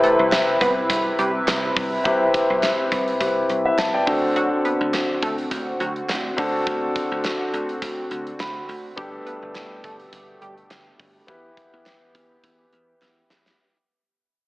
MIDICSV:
0, 0, Header, 1, 6, 480
1, 0, Start_track
1, 0, Key_signature, 1, "minor"
1, 0, Tempo, 576923
1, 1708, Time_signature, 4, 2, 24, 8
1, 12045, End_track
2, 0, Start_track
2, 0, Title_t, "Grand piano"
2, 0, Program_c, 0, 0
2, 0, Control_c, 0, 64, 127
2, 0, Note_on_c, 0, 48, 78
2, 0, Note_on_c, 0, 60, 77
2, 0, Note_on_c, 0, 64, 69
2, 0, Note_on_c, 0, 67, 68
2, 0, Note_on_c, 0, 71, 86
2, 475, Note_off_c, 0, 48, 0
2, 1670, Note_off_c, 0, 60, 0
2, 1673, Note_off_c, 0, 64, 0
2, 1676, Note_off_c, 0, 67, 0
2, 1679, Note_off_c, 0, 71, 0
2, 1698, Note_on_c, 0, 60, 76
2, 1705, Note_on_c, 0, 64, 70
2, 1708, Note_on_c, 0, 48, 72
2, 1712, Note_on_c, 0, 67, 68
2, 1719, Note_on_c, 0, 71, 78
2, 2395, Note_off_c, 0, 48, 0
2, 2644, Note_off_c, 0, 60, 0
2, 2647, Note_off_c, 0, 64, 0
2, 2651, Note_off_c, 0, 67, 0
2, 2654, Note_off_c, 0, 71, 0
2, 2662, Note_on_c, 0, 60, 51
2, 2666, Note_on_c, 0, 64, 51
2, 2669, Note_on_c, 0, 67, 47
2, 2672, Note_on_c, 0, 71, 61
2, 2910, Note_off_c, 0, 71, 0
2, 3041, Note_on_c, 0, 76, 67
2, 3046, Note_on_c, 0, 71, 57
2, 3141, Note_off_c, 0, 76, 0
2, 3146, Note_off_c, 0, 71, 0
2, 3148, Note_on_c, 0, 81, 70
2, 3154, Note_on_c, 0, 76, 59
2, 3274, Note_off_c, 0, 81, 0
2, 3276, Note_off_c, 0, 76, 0
2, 3278, Note_on_c, 0, 79, 66
2, 3283, Note_on_c, 0, 74, 56
2, 3366, Note_off_c, 0, 60, 0
2, 3379, Note_on_c, 0, 60, 72
2, 3385, Note_on_c, 0, 62, 64
2, 3387, Note_off_c, 0, 64, 0
2, 3387, Note_on_c, 0, 50, 73
2, 3388, Note_off_c, 0, 67, 0
2, 3392, Note_on_c, 0, 66, 66
2, 3398, Note_on_c, 0, 69, 77
2, 3399, Control_c, 0, 64, 0
2, 3507, Note_off_c, 0, 79, 0
2, 3509, Note_off_c, 0, 74, 0
2, 3566, Control_c, 0, 64, 127
2, 4074, Note_off_c, 0, 50, 0
2, 5270, Note_off_c, 0, 60, 0
2, 5273, Note_off_c, 0, 62, 0
2, 5277, Note_off_c, 0, 66, 0
2, 5280, Note_off_c, 0, 69, 0
2, 5298, Note_on_c, 0, 60, 76
2, 5304, Note_on_c, 0, 62, 64
2, 5307, Note_on_c, 0, 50, 74
2, 5310, Note_on_c, 0, 66, 69
2, 5317, Note_on_c, 0, 69, 84
2, 5994, Note_off_c, 0, 50, 0
2, 6989, Note_on_c, 0, 83, 72
2, 7189, Note_off_c, 0, 60, 0
2, 7193, Note_off_c, 0, 62, 0
2, 7196, Note_off_c, 0, 66, 0
2, 7199, Note_off_c, 0, 69, 0
2, 7435, Note_off_c, 0, 83, 0
2, 7455, Note_on_c, 0, 59, 75
2, 7463, Note_on_c, 0, 62, 68
2, 7466, Note_on_c, 0, 43, 73
2, 7470, Note_on_c, 0, 67, 71
2, 7476, Note_on_c, 0, 69, 84
2, 7480, Control_c, 0, 64, 0
2, 7627, Control_c, 0, 64, 127
2, 8154, Note_off_c, 0, 43, 0
2, 9348, Note_off_c, 0, 59, 0
2, 9352, Note_off_c, 0, 62, 0
2, 9355, Note_off_c, 0, 67, 0
2, 9359, Note_off_c, 0, 69, 0
2, 9377, Note_on_c, 0, 59, 73
2, 9384, Note_on_c, 0, 64, 68
2, 9387, Note_on_c, 0, 52, 72
2, 9390, Note_on_c, 0, 67, 70
2, 9397, Note_on_c, 0, 71, 87
2, 9400, Control_c, 0, 64, 0
2, 9539, Control_c, 0, 64, 127
2, 10074, Note_off_c, 0, 52, 0
2, 11269, Note_off_c, 0, 59, 0
2, 11273, Note_off_c, 0, 64, 0
2, 11276, Note_off_c, 0, 67, 0
2, 11279, Note_off_c, 0, 71, 0
2, 11319, Control_c, 0, 64, 0
2, 12045, End_track
3, 0, Start_track
3, 0, Title_t, "Analog polysynth"
3, 0, Program_c, 1, 90
3, 28, Note_on_c, 1, 57, 86
3, 28, Note_on_c, 1, 69, 94
3, 134, Note_off_c, 1, 57, 0
3, 134, Note_off_c, 1, 69, 0
3, 507, Note_on_c, 1, 59, 89
3, 507, Note_on_c, 1, 71, 98
3, 613, Note_off_c, 1, 59, 0
3, 613, Note_off_c, 1, 71, 0
3, 988, Note_on_c, 1, 55, 92
3, 988, Note_on_c, 1, 67, 100
3, 1094, Note_off_c, 1, 55, 0
3, 1094, Note_off_c, 1, 67, 0
3, 3627, Note_on_c, 1, 54, 104
3, 3628, Note_on_c, 1, 66, 121
3, 3733, Note_off_c, 1, 54, 0
3, 3733, Note_off_c, 1, 66, 0
3, 3868, Note_on_c, 1, 59, 83
3, 3868, Note_on_c, 1, 71, 94
3, 3973, Note_off_c, 1, 59, 0
3, 3974, Note_off_c, 1, 71, 0
3, 4348, Note_on_c, 1, 57, 86
3, 4348, Note_on_c, 1, 69, 98
3, 4453, Note_off_c, 1, 57, 0
3, 4453, Note_off_c, 1, 69, 0
3, 4827, Note_on_c, 1, 54, 94
3, 4827, Note_on_c, 1, 66, 106
3, 4933, Note_off_c, 1, 54, 0
3, 4933, Note_off_c, 1, 66, 0
3, 7468, Note_on_c, 1, 55, 109
3, 7468, Note_on_c, 1, 67, 123
3, 7574, Note_off_c, 1, 55, 0
3, 7574, Note_off_c, 1, 67, 0
3, 7707, Note_on_c, 1, 59, 85
3, 7707, Note_on_c, 1, 71, 88
3, 7813, Note_off_c, 1, 59, 0
3, 7813, Note_off_c, 1, 71, 0
3, 8187, Note_on_c, 1, 69, 97
3, 8188, Note_on_c, 1, 57, 88
3, 8293, Note_off_c, 1, 57, 0
3, 8293, Note_off_c, 1, 69, 0
3, 8668, Note_on_c, 1, 55, 96
3, 8668, Note_on_c, 1, 67, 111
3, 8773, Note_off_c, 1, 67, 0
3, 8774, Note_off_c, 1, 55, 0
3, 12045, End_track
4, 0, Start_track
4, 0, Title_t, "Analog synth pad"
4, 0, Program_c, 2, 89
4, 0, Note_on_c, 2, 48, 80
4, 0, Note_on_c, 2, 64, 85
4, 0, Note_on_c, 2, 71, 73
4, 3353, Note_off_c, 2, 71, 0
4, 3354, Note_off_c, 2, 48, 0
4, 3354, Note_off_c, 2, 64, 0
4, 3388, Note_on_c, 2, 50, 76
4, 3389, Note_on_c, 2, 60, 66
4, 3390, Note_on_c, 2, 66, 83
4, 7435, Note_off_c, 2, 50, 0
4, 7435, Note_off_c, 2, 60, 0
4, 7436, Note_off_c, 2, 66, 0
4, 7465, Note_on_c, 2, 47, 82
4, 7466, Note_on_c, 2, 57, 72
4, 7467, Note_on_c, 2, 67, 87
4, 9367, Note_off_c, 2, 47, 0
4, 9368, Note_off_c, 2, 57, 0
4, 9368, Note_off_c, 2, 67, 0
4, 9386, Note_on_c, 2, 59, 69
4, 9386, Note_on_c, 2, 67, 87
4, 9387, Note_on_c, 2, 52, 78
4, 11287, Note_off_c, 2, 67, 0
4, 11288, Note_off_c, 2, 52, 0
4, 11288, Note_off_c, 2, 59, 0
4, 12045, End_track
5, 0, Start_track
5, 0, Title_t, "Slap bass"
5, 0, Program_c, 3, 36
5, 159, Note_on_c, 3, 36, 97
5, 332, Note_off_c, 3, 36, 0
5, 507, Note_on_c, 3, 36, 108
5, 680, Note_off_c, 3, 36, 0
5, 747, Note_on_c, 3, 36, 93
5, 920, Note_off_c, 3, 36, 0
5, 987, Note_on_c, 3, 36, 94
5, 1160, Note_off_c, 3, 36, 0
5, 1227, Note_on_c, 3, 36, 90
5, 1400, Note_off_c, 3, 36, 0
5, 1469, Note_on_c, 3, 36, 101
5, 1641, Note_off_c, 3, 36, 0
5, 1708, Note_on_c, 3, 36, 109
5, 1881, Note_off_c, 3, 36, 0
5, 2079, Note_on_c, 3, 36, 91
5, 2252, Note_off_c, 3, 36, 0
5, 2427, Note_on_c, 3, 36, 105
5, 2600, Note_off_c, 3, 36, 0
5, 2666, Note_on_c, 3, 36, 90
5, 2840, Note_off_c, 3, 36, 0
5, 2905, Note_on_c, 3, 36, 94
5, 3079, Note_off_c, 3, 36, 0
5, 3145, Note_on_c, 3, 36, 90
5, 3319, Note_off_c, 3, 36, 0
5, 3388, Note_on_c, 3, 38, 102
5, 3733, Note_off_c, 3, 38, 0
5, 3999, Note_on_c, 3, 38, 103
5, 4172, Note_off_c, 3, 38, 0
5, 4347, Note_on_c, 3, 38, 98
5, 4520, Note_off_c, 3, 38, 0
5, 4586, Note_on_c, 3, 38, 104
5, 4760, Note_off_c, 3, 38, 0
5, 4827, Note_on_c, 3, 38, 93
5, 5000, Note_off_c, 3, 38, 0
5, 5068, Note_on_c, 3, 38, 98
5, 5241, Note_off_c, 3, 38, 0
5, 5309, Note_on_c, 3, 38, 98
5, 5481, Note_off_c, 3, 38, 0
5, 5548, Note_on_c, 3, 38, 105
5, 5721, Note_off_c, 3, 38, 0
5, 5920, Note_on_c, 3, 38, 101
5, 6093, Note_off_c, 3, 38, 0
5, 6268, Note_on_c, 3, 38, 92
5, 6441, Note_off_c, 3, 38, 0
5, 6506, Note_on_c, 3, 38, 94
5, 6680, Note_off_c, 3, 38, 0
5, 6747, Note_on_c, 3, 38, 96
5, 6920, Note_off_c, 3, 38, 0
5, 6986, Note_on_c, 3, 38, 100
5, 7159, Note_off_c, 3, 38, 0
5, 7228, Note_on_c, 3, 38, 102
5, 7401, Note_off_c, 3, 38, 0
5, 7467, Note_on_c, 3, 31, 110
5, 7640, Note_off_c, 3, 31, 0
5, 7839, Note_on_c, 3, 31, 94
5, 8012, Note_off_c, 3, 31, 0
5, 8187, Note_on_c, 3, 31, 103
5, 8360, Note_off_c, 3, 31, 0
5, 8426, Note_on_c, 3, 31, 96
5, 8599, Note_off_c, 3, 31, 0
5, 8667, Note_on_c, 3, 31, 98
5, 8840, Note_off_c, 3, 31, 0
5, 8908, Note_on_c, 3, 31, 96
5, 9081, Note_off_c, 3, 31, 0
5, 9147, Note_on_c, 3, 31, 91
5, 9320, Note_off_c, 3, 31, 0
5, 9388, Note_on_c, 3, 40, 106
5, 9561, Note_off_c, 3, 40, 0
5, 9762, Note_on_c, 3, 40, 102
5, 9934, Note_off_c, 3, 40, 0
5, 10107, Note_on_c, 3, 40, 98
5, 10280, Note_off_c, 3, 40, 0
5, 10347, Note_on_c, 3, 40, 96
5, 10520, Note_off_c, 3, 40, 0
5, 10588, Note_on_c, 3, 40, 96
5, 10761, Note_off_c, 3, 40, 0
5, 10828, Note_on_c, 3, 40, 91
5, 11001, Note_off_c, 3, 40, 0
5, 11068, Note_on_c, 3, 40, 104
5, 11241, Note_off_c, 3, 40, 0
5, 12045, End_track
6, 0, Start_track
6, 0, Title_t, "Drums"
6, 30, Note_on_c, 9, 42, 81
6, 113, Note_off_c, 9, 42, 0
6, 267, Note_on_c, 9, 39, 82
6, 268, Note_on_c, 9, 42, 83
6, 269, Note_on_c, 9, 38, 102
6, 269, Note_on_c, 9, 54, 70
6, 351, Note_off_c, 9, 39, 0
6, 352, Note_off_c, 9, 38, 0
6, 352, Note_off_c, 9, 42, 0
6, 353, Note_off_c, 9, 54, 0
6, 508, Note_on_c, 9, 36, 85
6, 510, Note_on_c, 9, 42, 68
6, 591, Note_off_c, 9, 36, 0
6, 593, Note_off_c, 9, 42, 0
6, 747, Note_on_c, 9, 36, 89
6, 749, Note_on_c, 9, 42, 106
6, 830, Note_off_c, 9, 36, 0
6, 833, Note_off_c, 9, 42, 0
6, 988, Note_on_c, 9, 42, 68
6, 1071, Note_off_c, 9, 42, 0
6, 1228, Note_on_c, 9, 39, 88
6, 1228, Note_on_c, 9, 42, 89
6, 1230, Note_on_c, 9, 38, 111
6, 1230, Note_on_c, 9, 54, 63
6, 1311, Note_off_c, 9, 42, 0
6, 1312, Note_off_c, 9, 39, 0
6, 1313, Note_off_c, 9, 38, 0
6, 1313, Note_off_c, 9, 54, 0
6, 1469, Note_on_c, 9, 36, 96
6, 1469, Note_on_c, 9, 46, 72
6, 1552, Note_off_c, 9, 36, 0
6, 1553, Note_off_c, 9, 46, 0
6, 1708, Note_on_c, 9, 36, 109
6, 1708, Note_on_c, 9, 42, 80
6, 1791, Note_off_c, 9, 36, 0
6, 1791, Note_off_c, 9, 42, 0
6, 1948, Note_on_c, 9, 36, 97
6, 1950, Note_on_c, 9, 42, 80
6, 2032, Note_off_c, 9, 36, 0
6, 2033, Note_off_c, 9, 42, 0
6, 2188, Note_on_c, 9, 39, 84
6, 2188, Note_on_c, 9, 42, 78
6, 2189, Note_on_c, 9, 38, 96
6, 2189, Note_on_c, 9, 54, 70
6, 2271, Note_off_c, 9, 39, 0
6, 2271, Note_off_c, 9, 42, 0
6, 2272, Note_off_c, 9, 38, 0
6, 2272, Note_off_c, 9, 54, 0
6, 2428, Note_on_c, 9, 36, 81
6, 2431, Note_on_c, 9, 42, 70
6, 2511, Note_off_c, 9, 36, 0
6, 2514, Note_off_c, 9, 42, 0
6, 2560, Note_on_c, 9, 42, 53
6, 2643, Note_off_c, 9, 42, 0
6, 2667, Note_on_c, 9, 36, 87
6, 2669, Note_on_c, 9, 42, 104
6, 2750, Note_off_c, 9, 36, 0
6, 2752, Note_off_c, 9, 42, 0
6, 2908, Note_on_c, 9, 42, 73
6, 2991, Note_off_c, 9, 42, 0
6, 3147, Note_on_c, 9, 42, 91
6, 3149, Note_on_c, 9, 38, 102
6, 3149, Note_on_c, 9, 39, 89
6, 3150, Note_on_c, 9, 54, 60
6, 3230, Note_off_c, 9, 42, 0
6, 3232, Note_off_c, 9, 38, 0
6, 3232, Note_off_c, 9, 39, 0
6, 3233, Note_off_c, 9, 54, 0
6, 3388, Note_on_c, 9, 36, 97
6, 3389, Note_on_c, 9, 46, 70
6, 3472, Note_off_c, 9, 36, 0
6, 3473, Note_off_c, 9, 46, 0
6, 3629, Note_on_c, 9, 42, 79
6, 3712, Note_off_c, 9, 42, 0
6, 3870, Note_on_c, 9, 42, 81
6, 3953, Note_off_c, 9, 42, 0
6, 4107, Note_on_c, 9, 38, 98
6, 4107, Note_on_c, 9, 42, 76
6, 4108, Note_on_c, 9, 39, 86
6, 4108, Note_on_c, 9, 54, 72
6, 4190, Note_off_c, 9, 42, 0
6, 4191, Note_off_c, 9, 38, 0
6, 4191, Note_off_c, 9, 54, 0
6, 4192, Note_off_c, 9, 39, 0
6, 4347, Note_on_c, 9, 36, 82
6, 4349, Note_on_c, 9, 42, 70
6, 4430, Note_off_c, 9, 36, 0
6, 4432, Note_off_c, 9, 42, 0
6, 4479, Note_on_c, 9, 42, 53
6, 4562, Note_off_c, 9, 42, 0
6, 4586, Note_on_c, 9, 36, 89
6, 4588, Note_on_c, 9, 42, 100
6, 4670, Note_off_c, 9, 36, 0
6, 4671, Note_off_c, 9, 42, 0
6, 4828, Note_on_c, 9, 42, 70
6, 4911, Note_off_c, 9, 42, 0
6, 4959, Note_on_c, 9, 42, 48
6, 5042, Note_off_c, 9, 42, 0
6, 5068, Note_on_c, 9, 42, 95
6, 5070, Note_on_c, 9, 38, 101
6, 5070, Note_on_c, 9, 39, 88
6, 5070, Note_on_c, 9, 54, 58
6, 5151, Note_off_c, 9, 42, 0
6, 5153, Note_off_c, 9, 38, 0
6, 5153, Note_off_c, 9, 39, 0
6, 5153, Note_off_c, 9, 54, 0
6, 5309, Note_on_c, 9, 36, 93
6, 5309, Note_on_c, 9, 46, 69
6, 5392, Note_off_c, 9, 36, 0
6, 5392, Note_off_c, 9, 46, 0
6, 5548, Note_on_c, 9, 36, 110
6, 5549, Note_on_c, 9, 42, 78
6, 5631, Note_off_c, 9, 36, 0
6, 5632, Note_off_c, 9, 42, 0
6, 5788, Note_on_c, 9, 36, 95
6, 5790, Note_on_c, 9, 42, 78
6, 5872, Note_off_c, 9, 36, 0
6, 5873, Note_off_c, 9, 42, 0
6, 6027, Note_on_c, 9, 39, 85
6, 6028, Note_on_c, 9, 38, 105
6, 6028, Note_on_c, 9, 42, 75
6, 6029, Note_on_c, 9, 54, 69
6, 6111, Note_off_c, 9, 39, 0
6, 6111, Note_off_c, 9, 42, 0
6, 6112, Note_off_c, 9, 38, 0
6, 6112, Note_off_c, 9, 54, 0
6, 6271, Note_on_c, 9, 42, 69
6, 6354, Note_off_c, 9, 42, 0
6, 6399, Note_on_c, 9, 42, 55
6, 6482, Note_off_c, 9, 42, 0
6, 6507, Note_on_c, 9, 36, 90
6, 6509, Note_on_c, 9, 42, 110
6, 6590, Note_off_c, 9, 36, 0
6, 6592, Note_off_c, 9, 42, 0
6, 6747, Note_on_c, 9, 42, 75
6, 6830, Note_off_c, 9, 42, 0
6, 6879, Note_on_c, 9, 42, 51
6, 6962, Note_off_c, 9, 42, 0
6, 6987, Note_on_c, 9, 42, 85
6, 6988, Note_on_c, 9, 38, 108
6, 6989, Note_on_c, 9, 39, 91
6, 6989, Note_on_c, 9, 54, 62
6, 7070, Note_off_c, 9, 42, 0
6, 7072, Note_off_c, 9, 38, 0
6, 7072, Note_off_c, 9, 39, 0
6, 7072, Note_off_c, 9, 54, 0
6, 7228, Note_on_c, 9, 46, 69
6, 7311, Note_off_c, 9, 46, 0
6, 7468, Note_on_c, 9, 36, 115
6, 7468, Note_on_c, 9, 42, 81
6, 7551, Note_off_c, 9, 36, 0
6, 7551, Note_off_c, 9, 42, 0
6, 7710, Note_on_c, 9, 42, 76
6, 7793, Note_off_c, 9, 42, 0
6, 7947, Note_on_c, 9, 38, 101
6, 7947, Note_on_c, 9, 42, 77
6, 7948, Note_on_c, 9, 39, 90
6, 7948, Note_on_c, 9, 54, 70
6, 8030, Note_off_c, 9, 38, 0
6, 8030, Note_off_c, 9, 42, 0
6, 8031, Note_off_c, 9, 39, 0
6, 8031, Note_off_c, 9, 54, 0
6, 8187, Note_on_c, 9, 36, 83
6, 8189, Note_on_c, 9, 42, 72
6, 8270, Note_off_c, 9, 36, 0
6, 8272, Note_off_c, 9, 42, 0
6, 8317, Note_on_c, 9, 42, 54
6, 8400, Note_off_c, 9, 42, 0
6, 8426, Note_on_c, 9, 36, 94
6, 8427, Note_on_c, 9, 42, 101
6, 8509, Note_off_c, 9, 36, 0
6, 8511, Note_off_c, 9, 42, 0
6, 8667, Note_on_c, 9, 42, 68
6, 8750, Note_off_c, 9, 42, 0
6, 8798, Note_on_c, 9, 42, 50
6, 8882, Note_off_c, 9, 42, 0
6, 8906, Note_on_c, 9, 42, 94
6, 8908, Note_on_c, 9, 38, 110
6, 8909, Note_on_c, 9, 54, 61
6, 8910, Note_on_c, 9, 39, 96
6, 8989, Note_off_c, 9, 42, 0
6, 8991, Note_off_c, 9, 38, 0
6, 8992, Note_off_c, 9, 54, 0
6, 8993, Note_off_c, 9, 39, 0
6, 9148, Note_on_c, 9, 36, 96
6, 9148, Note_on_c, 9, 46, 73
6, 9231, Note_off_c, 9, 36, 0
6, 9231, Note_off_c, 9, 46, 0
6, 9387, Note_on_c, 9, 42, 77
6, 9388, Note_on_c, 9, 36, 111
6, 9470, Note_off_c, 9, 42, 0
6, 9471, Note_off_c, 9, 36, 0
6, 9628, Note_on_c, 9, 36, 97
6, 9629, Note_on_c, 9, 42, 80
6, 9712, Note_off_c, 9, 36, 0
6, 9712, Note_off_c, 9, 42, 0
6, 9868, Note_on_c, 9, 38, 99
6, 9868, Note_on_c, 9, 39, 88
6, 9868, Note_on_c, 9, 42, 76
6, 9869, Note_on_c, 9, 54, 65
6, 9951, Note_off_c, 9, 38, 0
6, 9951, Note_off_c, 9, 39, 0
6, 9951, Note_off_c, 9, 42, 0
6, 9952, Note_off_c, 9, 54, 0
6, 10107, Note_on_c, 9, 36, 83
6, 10110, Note_on_c, 9, 42, 69
6, 10191, Note_off_c, 9, 36, 0
6, 10193, Note_off_c, 9, 42, 0
6, 10347, Note_on_c, 9, 36, 91
6, 10350, Note_on_c, 9, 42, 109
6, 10430, Note_off_c, 9, 36, 0
6, 10433, Note_off_c, 9, 42, 0
6, 10588, Note_on_c, 9, 42, 73
6, 10671, Note_off_c, 9, 42, 0
6, 10829, Note_on_c, 9, 38, 61
6, 10830, Note_on_c, 9, 39, 91
6, 10912, Note_off_c, 9, 38, 0
6, 10913, Note_off_c, 9, 39, 0
6, 11068, Note_on_c, 9, 38, 94
6, 11151, Note_off_c, 9, 38, 0
6, 11200, Note_on_c, 9, 38, 93
6, 11283, Note_off_c, 9, 38, 0
6, 12045, End_track
0, 0, End_of_file